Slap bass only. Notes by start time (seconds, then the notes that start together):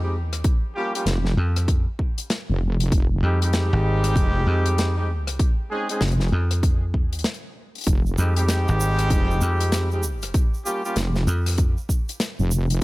Already playing: F2
0.16 E2
1.37 F2
3.23 F2
3.73 G#1
4.47 F2
6.32 F2
6.96 E2
8.18 F2
8.69 G#1
9.42 F2
11.27 F2